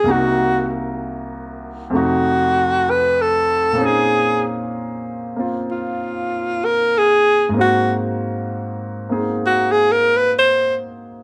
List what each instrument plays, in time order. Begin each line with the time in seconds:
Already playing: alto saxophone G#4
0.04 grand piano C2 C3 A#3 D#4
0.09 grand piano F#4, alto saxophone F#4
1.90 grand piano F2 C3 A3
1.95 grand piano D#4 F#4, alto saxophone F#4
2.90 alto saxophone B4
3.22 alto saxophone A4
3.73 grand piano A#2 A#3
3.77 grand piano C4 C#4
3.82 grand piano D#4 G#4, alto saxophone G#4
5.36 grand piano A#3 C4 F4
5.71 alto saxophone F4
6.65 alto saxophone A#4
6.98 alto saxophone G#4
7.49 grand piano G#2 G#3
7.54 grand piano A#3 C4
7.59 grand piano F#4, alto saxophone F#4
9.09 grand piano A#3 C4 D#4 G#4
9.46 alto saxophone F#4
9.72 alto saxophone G#4
9.92 alto saxophone A#4
10.17 alto saxophone B4
10.39 alto saxophone C5